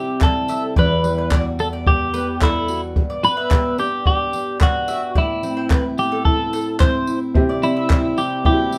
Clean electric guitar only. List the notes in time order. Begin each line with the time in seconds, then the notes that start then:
Already playing: G4
0.23 A4
0.79 B4
1.60 A4
1.88 G4
2.43 E4
3.25 B4
3.80 G4
4.07 G4
4.63 F#4
5.18 E4
5.99 G4
6.25 A4
6.80 C5
7.64 E4
8.18 G4
8.46 G4